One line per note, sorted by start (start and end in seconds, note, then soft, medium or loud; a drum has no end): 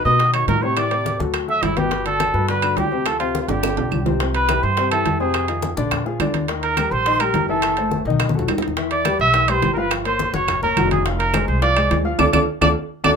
0.05 0.45 B2 medium
0.05 0.17 B2 medium
0.05 0.17 B3 medium
0.05 0.17 B4 medium
0.05 0.32 D#5 medium
0.05 0.32 D#6 medium
0.05 high bongo soft
0.05 high conga soft
0.19 0.31 D#3 medium
0.19 0.32 D#4 medium
0.19 0.32 F#4 medium
0.19 high bongo medium
0.19 high conga soft
0.19 high timbale medium
0.33 0.58 D#3 medium
0.33 0.58 D#4 medium
0.33 0.58 F#4 medium
0.33 0.47 C#5 medium
0.33 0.47 C#6 medium
0.33 high bongo soft
0.33 high conga soft
0.33 high timbale medium
0.33 claves medium
0.48 1.14 A2 medium
0.48 0.64 A#4 loud
0.48 0.64 A#5 medium
0.48 high bongo soft
0.48 low bongo medium
0.48 high conga medium
0.48 high timbale medium
0.48 low timbale medium
0.62 0.74 C3 medium
0.62 0.75 C4 medium
0.62 0.75 C5 medium
0.62 0.78 C#5 medium
0.62 0.78 C#6 medium
0.62 high conga soft
0.77 0.89 E3 medium
0.77 0.89 E4 medium
0.77 0.89 G4 medium
0.77 1.20 D5 loud
0.77 1.20 D6 medium
0.77 high bongo medium
0.77 high conga soft
0.77 high timbale medium
0.77 claves medium
0.91 1.14 C3 medium
0.91 1.15 C4 medium
0.91 1.15 C5 medium
0.91 high bongo soft
0.91 high conga soft
0.91 high timbale medium
1.05 high bongo medium
1.05 high conga medium
1.05 low timbale medium
1.19 1.60 D2 loud
1.19 1.43 F#3 medium
1.19 1.43 F#4 medium
1.19 1.43 A4 medium
1.19 high bongo soft
1.19 high conga medium
1.34 high bongo medium
1.34 high conga soft
1.34 high timbale medium
1.34 claves medium
1.48 1.72 F#3 medium
1.48 1.72 F#4 medium
1.48 1.72 A4 medium
1.48 1.65 E5 medium
1.48 1.65 E6 medium
1.48 high bongo soft
1.48 high conga soft
1.62 2.29 G1 medium
1.62 1.79 E4 medium
1.62 1.79 E5 medium
1.62 high bongo soft
1.62 low bongo medium
1.62 high conga medium
1.62 high timbale medium
1.62 low timbale medium
1.62 claves medium
1.77 1.89 B2 medium
1.77 1.89 B3 medium
1.77 2.06 G4 medium
1.77 1.89 B4 medium
1.77 2.05 G5 medium
1.77 high conga medium
1.77 high timbale medium
1.91 2.03 B2 medium
1.91 2.03 B3 medium
1.91 2.03 B4 medium
1.91 high bongo medium
1.91 high conga soft
1.91 high timbale medium
2.05 2.29 D3 medium
2.05 2.29 D4 medium
2.05 2.29 F#4 medium
2.05 2.46 A4 medium
2.05 2.46 A5 medium
2.05 high bongo soft
2.05 high conga soft
2.05 high timbale medium
2.20 high bongo medium
2.20 high conga medium
2.20 high timbale medium
2.20 low timbale medium
2.20 claves medium
2.34 2.74 G2 medium
2.34 2.46 B2 medium
2.34 2.46 B3 medium
2.34 2.46 B4 medium
2.34 high bongo soft
2.34 high conga soft
2.48 2.60 D3 medium
2.48 2.60 D4 medium
2.48 2.61 F#4 medium
2.48 2.79 B4 medium
2.48 2.79 B5 medium
2.48 high bongo medium
2.48 high conga soft
2.48 high timbale medium
2.62 2.86 D3 medium
2.62 2.86 D4 medium
2.62 2.86 F#4 medium
2.62 high bongo soft
2.62 high conga soft
2.62 high timbale medium
2.62 claves medium
2.77 3.43 D2 medium
2.77 3.07 G4 medium
2.77 3.08 G5 medium
2.77 high bongo soft
2.77 low bongo medium
2.77 high conga medium
2.77 high timbale medium
2.77 low timbale medium
2.92 3.03 C3 medium
2.92 3.03 C4 medium
2.92 3.04 C5 medium
2.92 high conga soft
3.06 3.18 F3 medium
3.06 3.18 F4 medium
3.06 3.19 A4 medium
3.06 3.18 A4 medium
3.06 3.20 A5 medium
3.06 high bongo medium
3.06 high conga soft
3.06 high timbale medium
3.06 claves medium
3.19 3.43 C3 medium
3.19 3.43 C4 medium
3.19 3.40 F4 medium
3.19 3.43 C5 medium
3.19 3.40 F5 medium
3.19 high bongo soft
3.19 high conga soft
3.19 high timbale medium
3.34 high bongo medium
3.34 high conga medium
3.34 low timbale medium
3.41 3.50 F4 medium
3.41 3.50 F5 soft
3.48 3.75 G1 medium
3.48 3.72 D3 medium
3.48 3.72 D4 medium
3.48 3.73 F4 medium
3.48 4.06 G4 medium
3.48 4.06 G5 medium
3.48 high bongo soft
3.48 high conga medium
3.48 high timbale medium
3.63 high bongo loud
3.63 high conga soft
3.63 high timbale medium
3.63 claves medium
3.77 3.90 B1 medium
3.77 4.00 D3 medium
3.77 4.01 D4 medium
3.77 4.01 F4 medium
3.77 high conga soft
3.77 high timbale medium
3.91 4.57 C2 medium
3.91 low bongo medium
3.91 high conga medium
3.91 low timbale medium
3.91 claves medium
4.05 4.17 C3 medium
4.05 4.18 C4 medium
4.05 4.18 C5 medium
4.05 low bongo medium
4.05 high conga medium
4.05 low timbale medium
4.20 4.44 C3 medium
4.20 4.44 C4 medium
4.20 4.44 C5 medium
4.20 high bongo medium
4.20 high conga soft
4.20 high timbale medium
4.34 4.64 B4 loud
4.34 4.64 B5 medium
4.34 high bongo soft
4.34 high conga soft
4.34 high timbale medium
4.49 4.72 E3 medium
4.49 4.72 E4 medium
4.49 4.73 G4 medium
4.49 high bongo medium
4.49 high conga medium
4.49 high timbale medium
4.49 low timbale medium
4.49 claves medium
4.63 5.03 G2 medium
4.63 4.91 C5 loud
4.63 4.90 C6 medium
4.63 high bongo soft
4.63 high conga soft
4.77 4.89 C3 medium
4.77 4.89 C4 medium
4.77 4.90 C5 medium
4.77 high bongo medium
4.77 high conga soft
4.77 high timbale medium
4.90 5.15 E3 medium
4.90 5.15 E4 medium
4.90 5.15 G4 medium
4.90 5.18 A4 medium
4.90 5.17 A5 medium
4.90 high bongo soft
4.90 high conga soft
4.90 high timbale medium
4.90 claves medium
5.06 5.72 F2 medium
5.06 high bongo soft
5.06 low bongo medium
5.06 high conga medium
5.06 high timbale medium
5.06 low timbale medium
5.19 5.43 C3 medium
5.19 5.44 C4 medium
5.19 5.73 G#4 medium
5.19 5.44 C5 medium
5.19 5.73 G#5 medium
5.19 high conga soft
5.34 high bongo medium
5.34 high conga soft
5.34 high timbale medium
5.34 claves medium
5.48 5.72 D#3 medium
5.48 5.72 D#4 medium
5.48 5.72 F4 medium
5.48 high bongo soft
5.48 high conga soft
5.48 high timbale medium
5.62 high bongo medium
5.62 high conga medium
5.62 low timbale medium
5.77 6.17 A#1 medium
5.77 6.00 D3 medium
5.77 6.01 D4 medium
5.77 6.01 D5 medium
5.77 high bongo soft
5.77 high conga medium
5.91 high bongo medium
5.91 high conga soft
5.91 low conga medium
5.91 high timbale medium
5.91 claves medium
6.05 6.17 F3 medium
6.05 6.17 F4 medium
6.05 6.18 G#4 medium
6.05 high bongo soft
6.05 high conga soft
6.20 6.86 D#2 medium
6.20 6.44 D3 medium
6.20 6.44 D4 medium
6.20 6.44 D5 medium
6.20 high bongo soft
6.20 low bongo medium
6.20 high conga medium
6.20 high timbale medium
6.20 low timbale medium
6.20 claves medium
6.34 high conga medium
6.34 high timbale medium
6.48 6.72 D#3 medium
6.48 6.72 D#4 medium
6.48 6.72 D#5 medium
6.48 high bongo medium
6.48 high timbale medium
6.63 6.93 A#4 loud
6.63 6.93 A#5 medium
6.63 high bongo soft
6.63 high conga soft
6.63 high timbale medium
6.77 7.01 G3 medium
6.77 7.01 G4 medium
6.77 7.01 A#4 medium
6.77 high bongo medium
6.77 high conga medium
6.77 high timbale medium
6.77 low timbale medium
6.77 claves medium
6.91 7.31 A#1 medium
6.91 7.22 C5 loud
6.91 7.22 C6 medium
6.91 high bongo soft
6.91 high conga soft
7.06 7.18 D#3 medium
7.06 7.18 D#4 medium
7.06 7.18 D#5 medium
7.06 high bongo medium
7.06 high conga soft
7.06 high timbale medium
7.20 7.44 G3 medium
7.20 7.44 G4 medium
7.20 7.49 A#4 loud
7.20 7.44 A#4 medium
7.20 7.48 A#5 medium
7.20 high bongo soft
7.20 high conga soft
7.20 high timbale medium
7.20 claves medium
7.34 8.00 F#1 medium
7.34 high bongo soft
7.34 low bongo medium
7.34 high conga medium
7.34 high timbale medium
7.34 low timbale medium
7.49 7.72 E3 medium
7.49 7.72 E4 medium
7.49 8.02 A4 medium
7.49 7.72 E5 medium
7.49 8.02 A5 medium
7.49 high conga soft
7.62 high bongo medium
7.62 high conga soft
7.62 high timbale medium
7.62 claves medium
7.77 8.01 A3 medium
7.77 8.01 A4 medium
7.77 8.01 C5 medium
7.77 high bongo soft
7.77 high conga soft
7.77 high timbale medium
7.91 high bongo medium
7.91 high conga medium
7.91 low timbale medium
8.05 8.45 B1 medium
8.05 8.29 D#3 medium
8.05 8.30 D#4 medium
8.05 8.30 D#5 medium
8.05 high bongo soft
8.10 high conga medium
8.20 high bongo medium
8.20 high conga medium
8.20 high timbale medium
8.20 claves medium
8.29 high conga loud
8.34 8.46 F#3 medium
8.34 8.46 F#4 medium
8.34 8.47 A4 medium
8.34 high bongo soft
8.39 low conga loud
8.48 9.14 E2 medium
8.48 8.72 D#3 medium
8.48 8.72 D#4 medium
8.48 8.72 D#5 medium
8.48 high bongo soft
8.48 low bongo medium
8.48 high timbale medium
8.48 low timbale medium
8.48 claves medium
8.58 low conga medium
8.62 high timbale medium
8.68 low conga medium
8.77 9.00 E3 medium
8.77 9.01 E4 medium
8.77 9.01 E5 medium
8.77 high bongo medium
8.77 high conga soft
8.77 high timbale medium
8.91 9.18 D5 loud
8.91 9.18 D6 medium
8.91 high bongo soft
8.91 high conga soft
8.91 high timbale medium
9.05 9.29 G3 medium
9.05 9.29 G4 medium
9.05 9.29 B4 medium
9.05 high bongo medium
9.05 high conga medium
9.05 high timbale medium
9.05 low timbale medium
9.05 claves medium
9.19 9.59 B1 medium
9.19 9.51 E5 loud
9.19 9.50 E6 medium
9.19 high bongo soft
9.19 high conga soft
9.34 9.46 E3 medium
9.34 9.46 E4 medium
9.34 9.46 E5 medium
9.34 high bongo medium
9.34 high conga soft
9.34 high timbale medium
9.48 9.72 G3 medium
9.48 9.72 G4 medium
9.48 9.72 B4 medium
9.48 9.73 C5 loud
9.48 9.72 C6 medium
9.48 high bongo soft
9.48 high conga soft
9.48 high timbale loud
9.48 claves medium
9.62 10.28 G1 medium
9.62 high bongo soft
9.62 low bongo medium
9.62 high conga medium
9.62 high timbale medium
9.62 low timbale medium
9.73 10.00 F3 medium
9.73 10.00 F4 medium
9.73 9.80 A#4 medium
9.73 9.78 A#5 medium
9.73 9.91 B5 medium
9.73 high conga soft
9.77 9.92 B4 medium
9.77 10.01 F5 medium
9.91 high bongo medium
9.91 high conga soft
9.91 high timbale medium
9.91 claves medium
10.05 10.28 A#3 medium
10.05 10.29 A#4 medium
10.05 10.32 C5 medium
10.05 10.29 C#5 medium
10.05 10.32 C6 medium
10.05 high bongo soft
10.05 high conga soft
10.05 high timbale medium
10.19 high bongo medium
10.19 high conga medium
10.19 low timbale medium
10.33 10.74 F#1 medium
10.33 10.57 F#3 medium
10.33 10.57 F#4 medium
10.33 10.61 C#5 loud
10.33 10.57 F#5 medium
10.33 10.61 C#6 medium
10.33 high bongo soft
10.33 high conga medium
10.48 high bongo medium
10.48 high conga soft
10.48 low conga medium
10.48 high timbale medium
10.48 claves medium
10.62 10.74 A#3 medium
10.62 10.74 A#4 medium
10.62 10.89 A#4 medium
10.62 10.74 C#5 medium
10.62 10.89 A#5 medium
10.62 high bongo soft
10.62 high conga soft
10.62 low conga medium
10.77 11.43 F1 medium
10.77 11.00 F#3 medium
10.77 11.00 F#4 medium
10.77 11.00 F#5 medium
10.77 high bongo soft
10.77 low bongo medium
10.77 high conga medium
10.77 high timbale medium
10.77 low timbale medium
10.77 claves medium
10.91 11.05 G#4 medium
10.91 11.04 G#5 medium
10.91 high conga medium
10.91 high timbale medium
11.05 11.29 F3 medium
11.05 11.29 F4 medium
11.05 11.29 F5 medium
11.05 high bongo medium
11.05 high conga soft
11.05 high timbale medium
11.19 11.46 A#4 loud
11.19 11.46 A#5 medium
11.19 high bongo soft
11.19 high conga soft
11.19 high timbale medium
11.33 11.57 G#3 medium
11.33 11.57 G#4 medium
11.33 11.57 C5 medium
11.33 high bongo medium
11.33 high conga medium
11.33 high timbale medium
11.33 low timbale medium
11.33 claves medium
11.48 11.88 C2 loud
11.48 11.61 C5 medium
11.48 11.61 C6 medium
11.48 high bongo soft
11.48 high conga soft
11.62 11.74 F3 medium
11.62 11.74 F4 medium
11.62 12.02 D5 loud
11.62 11.74 F5 medium
11.62 12.02 D6 medium
11.62 high bongo medium
11.62 high conga soft
11.62 high timbale medium
11.76 12.00 G#3 medium
11.76 12.00 G#4 medium
11.76 12.00 C5 medium
11.76 high bongo soft
11.76 high conga soft
11.76 high timbale medium
11.76 claves medium
11.91 12.17 D2 medium
11.91 high bongo soft
11.91 low bongo medium
11.91 high conga medium
11.91 high timbale medium
11.91 low timbale medium
12.05 12.16 F3 medium
12.05 12.17 F4 medium
12.05 12.17 F5 medium
12.05 high conga soft
12.18 12.30 D2 medium
12.18 12.28 D4 medium
12.18 12.28 F4 medium
12.18 12.28 A4 medium
12.18 12.26 D5 medium
12.18 12.28 D6 medium
12.18 low bongo loud
12.18 high conga medium
12.18 high timbale loud
12.18 claves loud
12.33 12.44 D2 medium
12.33 12.42 D4 medium
12.33 12.42 F4 medium
12.33 12.42 A4 loud
12.33 12.40 D5 medium
12.33 12.43 D6 medium
12.33 low bongo loud
12.33 high conga loud
12.33 high timbale loud
12.33 claves loud
12.61 12.72 D2 loud
12.61 12.71 D4 loud
12.61 12.71 F4 medium
12.61 12.71 A4 loud
12.61 12.68 D5 medium
12.61 12.71 D6 loud
12.61 low bongo loud
12.61 high conga medium
12.61 high timbale loud
12.61 claves medium
13.04 13.15 D2 medium
13.04 13.13 D4 medium
13.04 13.13 F#4 medium
13.04 13.13 A4 medium
13.04 13.11 D5 loud
13.04 13.14 D6 medium
13.04 low bongo loud
13.04 high conga loud
13.04 high timbale loud
13.04 claves medium